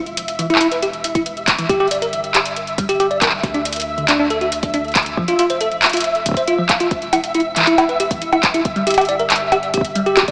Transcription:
0.00 1.67 E1 medium
0.00 10.31 E5 medium
0.06 closed hi-hat soft
0.17 closed hi-hat loud
0.28 closed hi-hat medium
0.39 0.44 E3 medium
0.39 closed hi-hat medium
0.50 0.58 E4 medium
0.50 closed hi-hat soft
0.55 clap loud
0.61 0.66 E4 loud
0.61 closed hi-hat medium
0.72 0.77 B4 medium
0.72 closed hi-hat medium
0.82 0.86 G4 medium
0.82 closed hi-hat medium
0.93 closed hi-hat soft
1.04 closed hi-hat medium
1.15 1.18 E4 medium
1.15 kick medium
1.15 closed hi-hat medium
1.26 closed hi-hat medium
1.37 closed hi-hat soft
1.48 kick loud
1.48 clap loud
1.48 closed hi-hat medium
1.58 1.64 E3 medium
1.58 closed hi-hat medium
1.69 3.41 G1 medium
1.69 1.78 G4 medium
1.69 kick loud
1.69 closed hi-hat medium
1.80 1.86 G4 medium
1.80 closed hi-hat soft
1.88 closed hi-hat soft
1.91 1.97 D5 medium
1.91 closed hi-hat medium
1.95 closed hi-hat soft
2.02 2.05 A#4 medium
2.02 closed hi-hat medium
2.13 closed hi-hat medium
2.24 closed hi-hat soft
2.35 2.38 G4 medium
2.35 clap loud
2.35 closed hi-hat medium
2.45 closed hi-hat medium
2.56 closed hi-hat medium
2.67 closed hi-hat soft
2.78 2.84 G3 medium
2.78 kick loud
2.78 closed hi-hat medium
2.89 2.97 G4 loud
2.89 closed hi-hat medium
3.00 3.05 G4 loud
3.00 closed hi-hat medium
3.11 3.16 D5 medium
3.11 closed hi-hat soft
3.22 3.25 A#4 medium
3.22 kick loud
3.22 clap loud
3.22 closed hi-hat medium
3.25 clap medium
3.29 clap medium
3.43 5.15 D2 medium
3.43 kick loud
3.43 closed hi-hat soft
3.54 3.58 D4 medium
3.54 closed hi-hat soft
3.65 closed hi-hat medium
3.73 closed hi-hat medium
3.76 closed hi-hat medium
3.80 closed hi-hat medium
3.81 closed hi-hat medium
3.98 4.03 D3 medium
3.98 closed hi-hat soft
4.09 4.17 D4 loud
4.09 clap loud
4.09 closed hi-hat medium
4.20 4.25 D4 medium
4.30 4.36 A4 medium
4.30 closed hi-hat medium
4.41 4.45 F#4 medium
4.41 closed hi-hat soft
4.52 closed hi-hat medium
4.63 kick medium
4.63 closed hi-hat medium
4.74 4.77 D4 medium
4.74 closed hi-hat medium
4.85 closed hi-hat soft
4.88 closed hi-hat soft
4.92 clap loud
4.92 closed hi-hat soft
4.95 kick loud
4.95 closed hi-hat medium
4.99 closed hi-hat soft
5.03 closed hi-hat soft
5.06 closed hi-hat medium
5.17 6.89 F1 medium
5.17 5.23 F3 medium
5.17 kick loud
5.28 5.36 F4 medium
5.28 closed hi-hat soft
5.39 5.45 F4 medium
5.39 closed hi-hat medium
5.50 5.56 C5 medium
5.50 closed hi-hat medium
5.61 5.64 A4 medium
5.61 closed hi-hat medium
5.72 closed hi-hat soft
5.82 clap loud
5.82 closed hi-hat soft
5.86 closed hi-hat soft
5.89 closed hi-hat soft
5.93 5.97 F4 medium
5.93 closed hi-hat medium
5.97 closed hi-hat medium
6.00 closed hi-hat medium
6.04 closed hi-hat soft
6.15 closed hi-hat soft
6.26 kick medium
6.26 closed hi-hat medium
6.29 kick medium
6.31 kick medium
6.34 6.42 C5 medium
6.34 kick loud
6.34 closed hi-hat medium
6.48 6.56 F4 medium
6.48 closed hi-hat soft
6.59 6.62 F3 loud
6.69 6.75 F5 medium
6.69 kick loud
6.69 clap loud
6.69 closed hi-hat medium
6.80 6.86 F4 medium
6.80 closed hi-hat medium
6.91 8.63 E1 medium
6.91 kick loud
6.91 closed hi-hat soft
7.02 closed hi-hat soft
7.13 7.16 E4 medium
7.13 closed hi-hat medium
7.13 high bongo soft
7.24 closed hi-hat soft
7.34 7.40 E4 medium
7.34 closed hi-hat soft
7.40 closed hi-hat soft
7.56 7.62 E3 medium
7.56 clap soft
7.56 closed hi-hat medium
7.59 clap medium
7.62 clap medium
7.64 7.76 E4 medium
7.64 clap medium
7.64 closed hi-hat soft
7.78 7.84 E4 loud
7.78 closed hi-hat soft
7.78 high bongo medium
7.89 7.95 B4 medium
7.89 closed hi-hat soft
8.00 8.03 G4 medium
8.00 closed hi-hat medium
8.11 kick medium
8.11 closed hi-hat soft
8.22 closed hi-hat soft
8.32 8.36 E4 medium
8.32 closed hi-hat soft
8.32 high bongo soft
8.43 kick loud
8.43 clap loud
8.43 closed hi-hat medium
8.54 8.60 E4 medium
8.54 closed hi-hat soft
8.65 10.31 G1 medium
8.65 kick loud
8.65 closed hi-hat soft
8.76 8.82 G3 medium
8.76 closed hi-hat soft
8.87 8.95 G4 medium
8.87 closed hi-hat medium
8.90 closed hi-hat medium
8.94 closed hi-hat medium
8.98 9.03 G4 medium
8.98 closed hi-hat soft
8.98 high bongo medium
9.01 closed hi-hat soft
9.05 9.14 D5 medium
9.05 closed hi-hat soft
9.09 closed hi-hat soft
9.19 9.23 A#4 medium
9.19 closed hi-hat soft
9.30 clap loud
9.30 closed hi-hat medium
9.36 closed hi-hat soft
9.52 9.55 G4 medium
9.52 closed hi-hat soft
9.52 high bongo soft
9.63 closed hi-hat soft
9.74 9.79 G4 medium
9.74 kick medium
9.74 closed hi-hat medium
9.77 kick medium
9.81 kick medium
9.81 closed hi-hat soft
9.95 10.01 G3 medium
9.95 closed hi-hat soft
10.06 10.15 G4 loud
10.06 closed hi-hat soft
10.17 10.23 G4 loud
10.17 kick soft
10.17 clap loud
10.17 closed hi-hat medium
10.17 high bongo medium
10.23 kick medium
10.28 10.31 D5 medium
10.28 kick medium
10.28 closed hi-hat soft

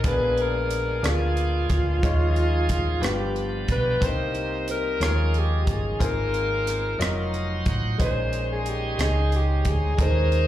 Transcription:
0.03 1.00 A#1 medium
0.03 0.99 A#2 soft
0.03 2.00 G#3 medium
0.03 0.86 A#3 medium
0.03 0.87 B3 medium
0.03 0.86 D4 medium
0.03 1.99 D4 soft
0.03 0.86 G#4 medium
0.03 0.11 A4 soft
0.03 kick medium
0.03 closed hi-hat medium
0.08 0.43 B4 medium
0.12 2.02 G#4 medium
0.37 closed hi-hat soft
0.42 1.10 A#4 medium
0.70 closed hi-hat medium
1.03 1.66 D2 medium
1.03 1.85 A#3 medium
1.03 1.86 D4 medium
1.03 1.86 G#4 medium
1.03 1.86 D5 medium
1.03 cross-stick medium
1.03 closed hi-hat medium
1.08 3.08 F4 medium
1.37 closed hi-hat soft
1.69 2.00 D2 medium
1.69 kick medium
1.69 closed hi-hat soft
2.03 2.98 D#2 medium
2.03 2.99 D#3 medium
2.03 3.01 F3 medium
2.03 2.85 G#3 medium
2.03 3.03 C#4 medium
2.03 2.85 D#4 medium
2.03 3.03 D#4 medium
2.03 2.86 F4 medium
2.03 3.02 G#4 medium
2.03 2.86 C#5 medium
2.03 kick medium
2.03 closed hi-hat medium
2.36 closed hi-hat soft
2.69 kick medium
2.69 closed hi-hat medium
3.00 3.64 G1 medium
3.00 3.97 G2 medium
3.00 4.02 F3 medium
3.00 3.84 G3 medium
3.00 4.01 B3 soft
3.00 3.84 D4 soft
3.00 4.02 D4 soft
3.00 3.84 F4 soft
3.00 4.01 G4 medium
3.00 3.84 B4 medium
3.00 closed hi-hat medium
3.04 3.44 G4 medium
3.04 cross-stick medium
3.36 closed hi-hat soft
3.68 3.99 B1 medium
3.68 4.06 B4 medium
3.68 kick medium
3.68 closed hi-hat medium
4.00 4.97 C2 medium
4.00 4.97 C3 soft
4.00 5.01 G3 soft
4.00 4.83 A#3 medium
4.00 5.01 C4 soft
4.00 4.08 D4 soft
4.00 5.01 D#4 soft
4.00 4.84 G4 medium
4.00 5.02 A#4 medium
4.00 4.84 C5 medium
4.00 kick medium
4.00 closed hi-hat medium
4.05 4.87 D#4 soft
4.05 4.70 C5 medium
4.35 closed hi-hat soft
4.68 5.01 A#4 medium
4.68 closed hi-hat medium
5.00 5.63 D#2 medium
5.00 5.96 D#3 medium
5.00 6.02 F3 soft
5.00 5.83 G#3 medium
5.00 6.02 C#4 soft
5.00 5.83 D#4 medium
5.00 6.02 D#4 soft
5.00 5.83 F4 soft
5.00 5.84 C#5 medium
5.00 cross-stick medium
5.00 closed hi-hat medium
5.04 6.02 G#4 medium
5.04 5.40 A#4 medium
5.34 closed hi-hat soft
5.39 5.62 G4 medium
5.62 5.73 G4 soft
5.67 5.98 G1 medium
5.67 kick medium
5.67 closed hi-hat soft
5.72 6.06 G#4 medium
5.99 6.96 G#1 medium
5.99 6.96 G#2 soft
5.99 7.00 G#3 soft
5.99 6.82 A#3 medium
5.99 6.07 B3 soft
5.99 7.00 F4 soft
5.99 6.82 F4 medium
5.99 6.83 G#4 medium
5.99 7.00 A#4 soft
5.99 6.83 C5 medium
5.99 kick medium
5.99 closed hi-hat medium
6.05 7.03 C4 soft
6.05 7.35 A#4 medium
6.34 closed hi-hat soft
6.67 cross-stick soft
6.67 closed hi-hat medium
6.98 7.62 F1 medium
6.98 7.81 F#3 medium
6.98 8.00 F#3 medium
6.98 7.98 D#4 medium
6.98 7.82 F4 medium
6.98 7.82 F#4 medium
6.98 7.07 F#4 medium
6.98 7.82 D#5 medium
6.98 7.49 F5 medium
6.98 closed hi-hat medium
7.02 cross-stick medium
7.07 7.98 C5 medium
7.33 7.48 D#5 medium
7.33 closed hi-hat soft
7.50 7.65 F5 medium
7.66 7.97 A1 medium
7.66 7.98 F#5 medium
7.66 kick medium
7.66 closed hi-hat medium
7.98 8.95 A#1 medium
7.98 8.95 A#2 soft
7.98 8.81 G#3 medium
7.98 9.94 G#3 soft
7.98 8.81 C#4 medium
7.98 9.95 C#4 soft
7.98 8.82 D#4 medium
7.98 9.95 D#4 soft
7.98 8.82 C5 medium
7.98 9.95 C5 medium
7.98 8.47 C5 medium
7.98 kick medium
7.98 closed hi-hat medium
8.33 closed hi-hat soft
8.53 8.71 G#4 medium
8.66 9.03 G4 medium
8.66 closed hi-hat medium
8.98 9.61 C#2 medium
8.98 9.81 G#3 medium
8.98 9.82 C#4 medium
8.98 9.82 D#4 medium
8.98 9.34 G#4 medium
8.98 9.82 D#5 medium
8.98 cross-stick medium
8.98 closed hi-hat medium
9.32 9.70 G4 medium
9.32 closed hi-hat soft
9.65 9.96 D2 medium
9.65 kick medium
9.65 closed hi-hat medium
9.69 10.03 G#4 medium
9.97 10.47 D#2 medium
9.97 10.47 D#3 soft
9.97 10.47 G#3 medium
9.97 10.47 C#4 soft
9.97 10.47 C#4 medium
9.97 10.47 D#4 soft
9.97 10.47 D#4 medium
9.97 10.47 G#4 soft
9.97 10.06 A4 medium
9.97 10.47 A#4 medium
9.97 kick medium
9.97 closed hi-hat medium
10.02 10.47 C5 medium
10.06 10.47 A#4 medium
10.32 closed hi-hat soft

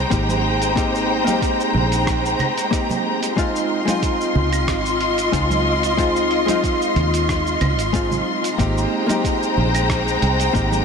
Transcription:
0.00 3.33 G#3 medium
0.00 3.33 C5 medium
0.00 3.33 G5 medium
0.00 3.33 A#5 medium
0.10 1.53 G#1 medium
0.10 0.72 A#3 medium
0.10 0.73 C4 medium
0.10 0.73 D#4 medium
0.10 0.74 G4 medium
0.10 kick loud
0.10 closed hi-hat medium
0.10 shaker soft
0.29 high conga medium
0.29 shaker soft
0.62 closed hi-hat soft
0.62 shaker medium
0.75 1.22 A#3 medium
0.75 1.22 C4 medium
0.75 1.23 D#4 medium
0.75 1.23 G4 loud
0.75 kick loud
0.75 closed hi-hat medium
0.75 shaker medium
0.95 shaker soft
1.24 2.67 A#3 medium
1.24 2.68 C4 medium
1.24 2.69 D#4 medium
1.24 closed hi-hat soft
1.24 high conga medium
1.24 shaker medium
1.29 2.70 G4 loud
1.42 kick loud
1.42 closed hi-hat medium
1.42 shaker medium
1.60 shaker soft
1.74 2.34 A#1 medium
1.74 low conga medium
1.92 closed hi-hat soft
1.92 shaker medium
2.07 kick loud
2.07 cross-stick medium
2.07 closed hi-hat medium
2.07 shaker medium
2.26 shaker soft
2.39 closed hi-hat soft
2.39 low conga loud
2.39 claves medium
2.58 closed hi-hat soft
2.58 shaker medium
2.71 3.33 A#3 medium
2.71 3.33 C4 medium
2.71 3.34 D#4 medium
2.71 3.34 G4 medium
2.71 kick loud
2.71 closed hi-hat medium
2.71 shaker medium
2.89 high conga medium
2.89 low conga medium
2.89 shaker soft
3.23 closed hi-hat soft
3.23 shaker medium
3.37 3.83 G#3 medium
3.37 3.83 C4 medium
3.37 3.83 D#4 medium
3.37 8.55 F4 medium
3.37 3.84 F4 loud
3.37 8.55 D#5 medium
3.37 8.55 C6 medium
3.37 kick loud
3.37 closed hi-hat soft
3.37 shaker medium
3.56 shaker soft
3.85 5.28 G#3 medium
3.85 5.29 C4 medium
3.85 5.30 D#4 medium
3.85 closed hi-hat soft
3.85 high conga medium
3.85 shaker medium
3.90 5.31 F4 loud
4.02 kick loud
4.02 closed hi-hat soft
4.02 shaker medium
4.21 shaker soft
4.35 4.68 C#2 medium
4.35 low conga medium
4.53 closed hi-hat soft
4.53 claves medium
4.53 shaker medium
4.68 5.27 G#1 medium
4.68 kick loud
4.68 cross-stick medium
4.68 closed hi-hat soft
4.68 shaker medium
4.86 shaker soft
5.01 closed hi-hat soft
5.18 closed hi-hat soft
5.18 shaker medium
5.32 6.90 C#2 medium
5.32 5.94 G#3 medium
5.32 5.94 C4 medium
5.32 5.95 D#4 medium
5.32 5.95 F4 medium
5.32 kick loud
5.32 closed hi-hat medium
5.32 shaker medium
5.51 high conga medium
5.51 shaker soft
5.83 closed hi-hat soft
5.83 shaker medium
5.97 6.44 G#3 medium
5.97 6.44 C4 medium
5.97 6.44 D#4 medium
5.97 6.45 F4 loud
5.97 kick loud
5.97 closed hi-hat soft
5.97 shaker medium
6.16 shaker soft
6.31 closed hi-hat soft
6.46 7.89 G#3 medium
6.46 7.90 C4 medium
6.46 7.91 D#4 medium
6.46 closed hi-hat soft
6.46 high conga medium
6.46 shaker medium
6.50 7.91 F4 loud
6.63 kick loud
6.63 closed hi-hat soft
6.63 shaker soft
6.82 shaker soft
6.96 7.55 D#2 medium
6.96 closed hi-hat soft
6.96 low conga medium
7.14 closed hi-hat soft
7.14 shaker medium
7.29 kick loud
7.29 cross-stick medium
7.29 closed hi-hat soft
7.29 shaker medium
7.47 shaker soft
7.61 7.79 C#2 medium
7.61 closed hi-hat soft
7.61 low conga medium
7.61 claves medium
7.79 8.21 G#1 medium
7.79 closed hi-hat soft
7.79 shaker medium
7.93 8.55 G#3 medium
7.93 8.55 C4 medium
7.93 8.56 D#4 medium
7.93 8.56 F4 medium
7.93 kick loud
7.93 closed hi-hat soft
7.93 shaker medium
8.11 high conga medium
8.11 low conga medium
8.11 shaker soft
8.44 closed hi-hat soft
8.44 shaker medium
8.58 8.84 G#1 medium
8.58 10.85 G#3 medium
8.58 9.04 A#3 medium
8.58 9.05 C4 medium
8.58 9.05 D#4 medium
8.58 9.05 G4 loud
8.58 10.85 C5 medium
8.58 10.85 G5 medium
8.58 10.85 A#5 medium
8.58 kick loud
8.58 closed hi-hat soft
8.58 shaker soft
8.78 shaker soft
9.06 10.50 A#3 medium
9.06 10.50 C4 medium
9.06 10.51 D#4 medium
9.06 closed hi-hat soft
9.06 high conga medium
9.06 shaker medium
9.11 10.52 G4 loud
9.24 kick loud
9.24 closed hi-hat soft
9.24 shaker medium
9.43 shaker soft
9.57 10.16 A#1 medium
9.57 low conga medium
9.75 closed hi-hat soft
9.75 claves medium
9.75 shaker medium
9.89 kick loud
9.89 cross-stick medium
9.89 closed hi-hat soft
9.89 shaker medium
10.08 shaker soft
10.22 10.47 C2 medium
10.22 closed hi-hat soft
10.40 closed hi-hat soft
10.40 shaker medium
10.53 10.85 G#1 medium
10.53 10.85 A#3 medium
10.53 10.85 C4 medium
10.53 10.85 D#4 medium
10.53 10.85 G4 medium
10.53 kick loud
10.53 closed hi-hat medium
10.53 shaker medium
10.72 high conga medium
10.72 shaker soft

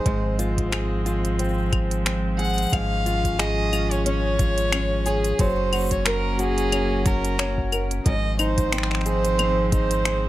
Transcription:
0.00 5.35 G#3 medium
0.00 1.39 C4 medium
0.00 0.13 D#4 medium
0.00 0.72 G#4 medium
0.00 0.39 C5 medium
0.06 2.67 G#1 loud
0.06 2.71 G#2 medium
0.06 5.35 F3 medium
0.06 2.70 C4 medium
0.06 kick loud
0.06 closed hi-hat medium
0.06 cabasa soft
0.39 1.05 F4 medium
0.39 closed hi-hat soft
0.39 cabasa medium
0.58 kick soft
0.58 closed hi-hat soft
0.72 2.39 G#4 medium
0.72 finger snap medium
0.72 closed hi-hat soft
0.72 cabasa soft
0.72 claves medium
1.06 3.05 F4 medium
1.06 closed hi-hat soft
1.06 cabasa medium
1.25 closed hi-hat soft
1.25 cabasa soft
1.39 2.05 C4 medium
1.39 closed hi-hat medium
1.39 cabasa soft
1.44 cabasa soft
1.49 cabasa soft
1.54 cabasa soft
1.58 cabasa soft
1.62 cabasa soft
1.66 cabasa soft
1.69 finger snap soft
1.69 kick loud
1.69 closed hi-hat soft
1.69 cabasa soft
1.69 claves medium
1.91 closed hi-hat soft
1.91 cabasa soft
2.06 2.80 C4 medium
2.06 finger snap medium
2.06 closed hi-hat medium
2.06 cabasa soft
2.38 3.39 G#4 medium
2.38 2.74 F#5 loud
2.38 closed hi-hat soft
2.38 cabasa soft
2.44 cabasa soft
2.49 cabasa soft
2.54 cabasa soft
2.58 closed hi-hat soft
2.58 cabasa medium
2.62 cabasa medium
2.66 cabasa medium
2.69 5.34 G#1 loud
2.69 5.39 G#2 medium
2.69 5.36 C#4 medium
2.69 3.41 F5 loud
2.69 kick loud
2.69 closed hi-hat medium
2.69 cabasa medium
2.69 claves medium
2.73 cabasa soft
3.06 3.71 F4 medium
3.06 closed hi-hat soft
3.06 cabasa medium
3.25 kick soft
3.25 closed hi-hat soft
3.25 cabasa soft
3.39 5.05 G#4 medium
3.39 3.93 D#5 loud
3.39 finger snap medium
3.39 closed hi-hat medium
3.39 cabasa soft
3.73 4.38 F4 medium
3.73 closed hi-hat soft
3.73 cabasa medium
3.73 claves medium
3.91 4.06 C#5 medium
3.91 closed hi-hat soft
3.91 cabasa soft
4.06 4.72 C#4 medium
4.06 5.08 C#5 loud
4.06 closed hi-hat medium
4.06 cabasa soft
4.39 5.47 F4 medium
4.39 kick loud
4.39 closed hi-hat soft
4.39 cabasa medium
4.58 closed hi-hat soft
4.58 cabasa soft
4.72 6.72 C#4 medium
4.72 finger snap medium
4.72 closed hi-hat medium
4.72 cabasa soft
4.72 claves medium
5.06 5.47 G#4 medium
5.06 5.42 G#4 medium
5.06 closed hi-hat soft
5.06 cabasa medium
5.24 closed hi-hat soft
5.24 cabasa soft
5.39 8.00 F#1 loud
5.39 8.06 F#3 medium
5.39 8.03 F#3 medium
5.39 8.03 A#3 medium
5.39 8.03 C#4 medium
5.39 5.94 C5 loud
5.39 kick loud
5.39 closed hi-hat medium
5.39 cabasa soft
5.43 cabasa soft
5.46 cabasa soft
5.51 cabasa soft
5.55 cabasa soft
5.73 6.38 F#4 medium
5.73 closed hi-hat soft
5.73 cabasa soft
5.73 claves medium
5.76 cabasa soft
5.78 cabasa soft
5.81 cabasa soft
5.84 cabasa soft
5.86 cabasa medium
5.89 6.09 C#5 medium
5.89 kick soft
5.89 closed hi-hat soft
5.89 cabasa medium
6.06 7.71 A#4 medium
6.06 6.42 A#4 medium
6.06 finger snap medium
6.06 closed hi-hat medium
6.06 cabasa soft
6.39 7.04 F#4 medium
6.39 7.09 G#4 loud
6.39 closed hi-hat soft
6.39 cabasa medium
6.58 closed hi-hat soft
6.58 cabasa soft
6.72 7.38 C#4 medium
6.72 closed hi-hat medium
6.72 cabasa soft
6.72 claves medium
7.06 8.13 F#4 medium
7.06 7.73 A#4 medium
7.06 finger snap soft
7.06 kick loud
7.06 closed hi-hat soft
7.06 cabasa medium
7.25 closed hi-hat soft
7.25 cabasa soft
7.39 8.13 C#4 medium
7.39 finger snap medium
7.39 closed hi-hat medium
7.39 cabasa soft
7.58 kick medium
7.72 8.13 A#4 medium
7.72 closed hi-hat soft
7.72 cabasa medium
7.72 claves medium
7.91 closed hi-hat soft
7.91 cabasa soft
8.06 10.29 G#1 medium
8.06 10.29 G#2 medium
8.06 10.29 F3 medium
8.06 10.29 G#3 medium
8.06 10.29 C4 medium
8.06 8.37 D#5 medium
8.06 kick loud
8.06 closed hi-hat medium
8.06 cabasa soft
8.39 9.71 D#4 medium
8.39 9.02 C5 medium
8.39 closed hi-hat soft
8.39 cabasa medium
8.39 claves medium
8.58 kick medium
8.58 closed hi-hat soft
8.58 cabasa soft
8.72 9.39 C4 medium
8.72 finger snap medium
8.72 closed hi-hat medium
8.72 cabasa soft
8.78 finger snap medium
8.83 finger snap medium
8.91 finger snap medium
8.95 finger snap soft
9.01 finger snap soft
9.06 10.05 G#4 medium
9.06 9.69 C5 loud
9.06 closed hi-hat soft
9.06 cabasa medium
9.25 closed hi-hat soft
9.25 cabasa soft
9.39 10.29 C4 medium
9.39 closed hi-hat medium
9.39 cabasa soft
9.39 claves medium
9.72 10.29 D#4 medium
9.72 10.29 C5 loud
9.72 kick loud
9.72 closed hi-hat medium
9.72 cabasa medium
9.91 closed hi-hat soft
9.91 cabasa soft
10.05 10.29 G#4 medium
10.05 finger snap loud
10.05 closed hi-hat medium
10.05 cabasa soft

